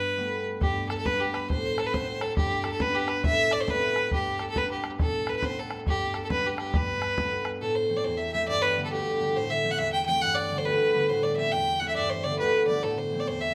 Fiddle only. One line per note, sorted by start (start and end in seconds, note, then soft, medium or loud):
0.00 0.44 B4 medium
0.61 0.87 G4 medium
0.89 0.96 A4 medium
0.98 1.07 A4 medium
1.06 1.21 B4 medium
1.20 1.35 G4 medium
1.34 1.49 B4 medium
1.50 1.81 C5 medium
1.79 1.88 A4 medium
1.86 1.95 B4 medium
1.93 2.23 C5 medium
2.22 2.36 A4 medium
2.37 2.66 G4 medium
2.65 2.72 A4 medium
2.72 2.83 A4 medium
2.82 2.96 B4 medium
2.95 3.10 G4 medium
3.08 3.24 B4 medium
3.25 3.54 E5 loud
3.52 3.62 D5 medium
3.61 3.71 C5 medium
3.70 4.12 B4 medium
4.13 4.43 G4 medium
4.41 4.48 A4 medium
4.50 4.59 A4 medium
4.57 4.70 B4 medium
4.71 4.91 G4 medium
5.00 5.31 A4 medium
5.29 5.36 B4 medium
5.37 5.46 B4 medium
5.45 5.61 C5 medium
5.59 5.80 A4 medium
5.88 6.17 G4 medium
6.16 6.23 A4 medium
6.25 6.30 A4 medium
6.31 6.48 B4 medium
6.46 6.58 G4 medium
6.58 6.77 G4 medium
6.76 7.46 B4 medium
7.62 7.77 A4 medium
7.75 7.98 C5 medium
7.96 8.06 D5 medium
8.04 8.19 C5 medium
8.17 8.32 E5 medium
8.32 8.47 E5 medium
8.48 8.63 D5 loud
8.62 8.83 B4 medium
8.84 8.91 A4 medium
8.93 9.38 G4 medium
9.36 9.51 C5 loud
9.50 9.72 E5 medium
9.71 9.80 F#5 medium
9.78 9.92 E5 loud
9.93 10.05 G5 medium
10.06 10.23 G5 loud
10.21 10.36 F#5 loud
10.35 10.59 D5 medium
10.58 10.66 C5 medium
10.65 11.10 B4 medium
11.09 11.24 C5 medium
11.23 11.36 D5 medium
11.36 11.54 E5 medium
11.52 11.81 G5 medium
11.80 11.88 F#5 medium
11.88 11.94 E5 medium
11.95 12.11 D5 medium
11.95 11.97 E5 medium
12.10 12.26 C5 medium
12.24 12.39 D5 medium
12.39 12.66 B4 medium
12.68 12.85 D5 medium
12.84 13.00 A4 medium
12.98 13.21 C5 medium
13.20 13.29 D5 medium
13.27 13.42 C5 medium
13.41 13.54 E5 medium